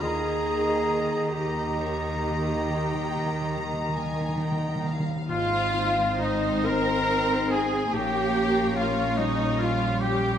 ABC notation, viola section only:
X:1
M:12/8
L:1/8
Q:3/8=46
K:Ab
V:1 name="Viola section"
A3 G6 z3 | F2 E B2 A G2 F E F G |]